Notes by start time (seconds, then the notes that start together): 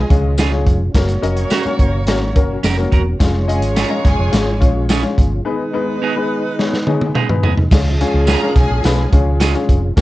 Already playing: F3 G#3 C#4 F4 D#5
0.10 C#2 G#3 C#4 F4 G#4 C#5, kick, closed hi-hat
0.38 C#4 F4 G#4, snare, closed hi-hat, tambourine
0.52 G#3 C#4 F4 G#4 C#5
0.67 F1, kick, closed hi-hat
0.94 F#1 F#3 A#3 C#4 F#4 A#4 C#5, kick, snare, closed hi-hat, tambourine
1.09 closed hi-hat
1.22 F1 A#3 C#4 F#4 A#4 D#5, closed hi-hat
1.37 closed hi-hat
1.50 C#4 F#4 A#4, snare, closed hi-hat, tambourine
1.65 A#3 C#4 F#4 A#4 C#5, muted fingered electric bass stroke
1.79 F#1, kick, closed hi-hat
2.07 G#1 A#3 C#4 F#4 A#4 C#5, snare, closed hi-hat, tambourine
2.36 F#1 A#3 C#4 F#4 A#4 C#5, kick, closed hi-hat
2.63 F1 C#4 F#4 A#4, snare, closed hi-hat, tambourine
2.77 A#3 C#4 F#4 A#4 C#5
2.92 E1 C#4 F#4 A#4, kick, closed hi-hat
3.20 F1 F3 G#3 C#4 F4 G#4 C#5, kick, snare, closed hi-hat, tambourine
3.48 G#3 C#4 F4 G#4 D#5 G#5, closed hi-hat
3.62 G#1, closed hi-hat
3.75 C#4 F4 G#4 A#4 A#5, snare, closed hi-hat, tambourine
3.89 G#3 C#4 F4 G#4 D#5
4.05 F#1 G#4 G#5, kick, snare, closed hi-hat
4.19 F1
4.31 G#1 G#3 C#4 F4 G#4 C#5, snare, closed hi-hat, tambourine
4.60 A#1 G#3 C#4 F4 G#4 C#5, kick, closed hi-hat
4.89 C#4 F4 G#4, snare, closed hi-hat, tambourine
5.03 G#3 C#4 F4 G#4 C#5
5.18 G1, kick, closed hi-hat
5.45 D#3 G#3 B3 D#4 G#4 B4
5.73 G#3 B3 D#4 G#4 B4
6.02 B3 D#4 G#4
6.16 G#3 B3 D#4 G#4 B4
6.58 G#3 B3 D#4 G#4 C#5, snare
6.73 snare
6.87 G#3 B3 D#4 G#4 C#5, high tom
7.01 high tom
7.15 B3 D#4 G#4, mid tom
7.29 G#3 B3 D#4 G#4 B4, mid tom
7.43 B3 D#4 G#4, floor tom
7.58 floor tom
7.71 C#2 F3 G#3 C#4 F4 G#4 C#5, kick, snare, crash, tambourine
7.99 G#3 C#4 F4 G#4 C#5 G#5, closed hi-hat
8.14 C#2
8.27 C#4 F4 G#4 A#4 A#5, snare, closed hi-hat, tambourine
8.43 G#3 C#4 F4 G#4 C#5
8.56 B1 G#4 G#5, kick, snare, closed hi-hat
8.70 A#1
8.84 B1 G#3 C#4 F4 G#4 B4, snare, closed hi-hat, tambourine
9.13 C#2 G#3 C#4 F4 G#4 C#5, kick, closed hi-hat
9.40 C#4 F4 G#4, snare, closed hi-hat, tambourine
9.54 G#3 C#4 F4 G#4 C#5
9.69 F1, kick, closed hi-hat
9.96 F#1 F#3 A#3 C#4 F#4 A#4 C#5, kick, snare, closed hi-hat, tambourine